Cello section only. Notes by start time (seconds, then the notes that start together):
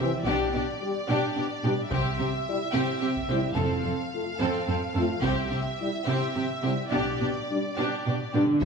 0.27 B2
0.54 B2
1.09 B2
1.36 B2
1.64 B2
1.91 C3
2.19 C3
2.74 C3
3.02 C3
3.29 C3
3.57 F2
3.84 F2
4.40 F2
4.68 F2
4.95 F2
5.23 C3
5.51 C3
6.07 C3
6.35 C3
6.63 C3
6.92 B2
7.21 B2
7.78 B2
8.06 B2
8.34 B2 D3